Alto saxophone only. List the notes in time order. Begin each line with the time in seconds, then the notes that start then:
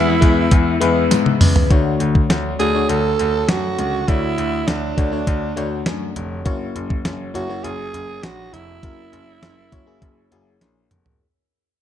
Already playing: E4
2.60 G#4
2.89 A4
3.48 F#4
4.08 E4
4.68 D4
7.35 F#4
7.64 G#4
8.24 F#4
8.53 E4